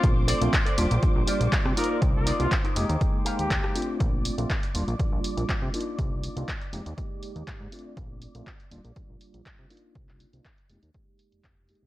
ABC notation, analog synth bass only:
X:1
M:4/4
L:1/16
Q:"Swing 16ths" 1/4=121
K:Bb
V:1 name="Analog synth bass" clef=bass
B,,,2 z B,,, z2 E,,, B,,, B,,, B,,, z B,,, z C, z2 | C,,2 z C,, z2 F,,, E,, z3 E,, E,, z3 | B,,,2 z B,,, z2 E,,, B,,, z B,,, z B,,, z C, z2 | C,,2 z C,, z2 F,,, E,, z3 E,, z _A,, z2 |
B,,,2 z B,,, z2 E,,, B,,, z B,,, z B,,, z C, z2 | C,,2 z C,, z2 F,,, E,, z3 F,,, F,,,2 z C,, |]